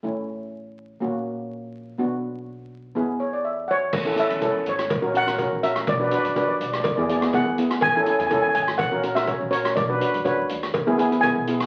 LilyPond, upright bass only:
\new Staff \with { instrumentName = "Upright bass" } { \clef bass \time 4/4 \key a \major \tempo 4 = 123 a,,2 ais,,2 | b,,2 e,2 | a,,8 r16 e,8. gis,,8 ais,,16 ais,,4 ais,,8. | b,,8 r16 fis,8. b,,8 e,16 e,4 e,8. |
a,,8 r16 e,8. gis,,8 ais,,16 ais,,4 ais,,8. | b,,8 r16 fis,8. dis,8 e,16 e,4 b,,8. | }